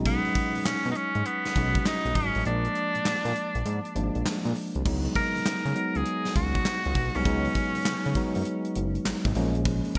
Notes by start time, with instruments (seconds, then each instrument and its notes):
Already playing: analog synth bass B1, tine electric piano F#3 G#3 C#4 D#4
0.05 tenor saxophone B3, kick, closed hi-hat
0.25 closed hi-hat
0.35 kick, closed hi-hat
0.55 analog synth bass B2, closed hi-hat
0.65 analog synth bass B2, tenor saxophone C#4, snare, clap
0.85 analog synth bass B2, closed hi-hat
0.91 tenor saxophone D#4
0.95 tenor saxophone C#4, closed hi-hat
1.15 analog synth bass G#2, closed hi-hat
1.26 tenor saxophone B3, closed hi-hat
1.45 snare, closed hi-hat
1.56 analog synth bass B1, tine electric piano F#3 G#3 C#4 F#4, kick, closed hi-hat
1.75 kick, closed hi-hat
1.85 tenor saxophone D#4, snare, clap
2.05 analog synth bass B1, closed hi-hat
2.15 analog synth bass G#1, tenor saxophone C#4, kick, closed hi-hat
2.35 analog synth bass A1, closed hi-hat
2.45 analog synth bass A#1, tine electric piano F3 G#3 A#3 D4, tenor saxophone D4, closed hi-hat
2.65 closed hi-hat
2.75 closed hi-hat
2.95 analog synth bass A#2, closed hi-hat
3.05 analog synth bass A#2, snare, clap
3.25 analog synth bass A#2, closed hi-hat
3.36 closed hi-hat
3.55 analog synth bass A#1, closed hi-hat
3.66 analog synth bass G#2, closed hi-hat
3.85 closed hi-hat
3.95 analog synth bass G#1, tine electric piano F3 G#3 A#3 D4, closed hi-hat
4.15 analog synth bass A#1, closed hi-hat
4.26 snare, clap
4.45 analog synth bass A#2, closed hi-hat
4.55 open hi-hat
4.75 analog synth bass C2, closed hi-hat
4.85 analog synth bass C#2, tine electric piano F#3 G#3 B3 D#4, kick, crash
5.05 closed hi-hat
5.15 tenor saxophone A#4, kick, closed hi-hat
5.35 analog synth bass C#3, closed hi-hat
5.46 analog synth bass C#3, snare, clap
5.65 analog synth bass C#3, closed hi-hat
5.75 tine electric piano F#3 G#3 B3 D#4, closed hi-hat
5.95 analog synth bass C#2, tenor saxophone G#4, closed hi-hat
6.06 closed hi-hat
6.25 snare, closed hi-hat
6.36 analog synth bass C#2, tenor saxophone F#4, kick, closed hi-hat
6.55 kick, closed hi-hat
6.65 snare, clap
6.85 analog synth bass C#2, closed hi-hat
6.95 analog synth bass B1, kick, closed hi-hat
7.15 analog synth bass C2, tine electric piano F#3 G#3 B3 D#4, tenor saxophone C#4, closed hi-hat
7.25 analog synth bass C#2, tine electric piano F#3 G#3 B3 D#4, kick, closed hi-hat
7.45 closed hi-hat
7.55 kick, closed hi-hat
7.75 analog synth bass C#3, closed hi-hat
7.85 analog synth bass C#3, snare, clap
8.05 analog synth bass C#3, closed hi-hat
8.15 tine electric piano F#3 G#3 B3 D#4, kick, closed hi-hat
8.35 analog synth bass F#2, closed hi-hat
8.45 closed hi-hat
8.65 closed hi-hat
8.75 analog synth bass F#1, closed hi-hat
8.95 closed hi-hat
9.05 analog synth bass G#1, snare, clap
9.25 analog synth bass G#1, kick, closed hi-hat
9.35 analog synth bass A#1, tine electric piano F3 G#3 A#3 C#4, closed hi-hat
9.55 closed hi-hat
9.65 kick, closed hi-hat
9.85 closed hi-hat
9.95 kick, closed hi-hat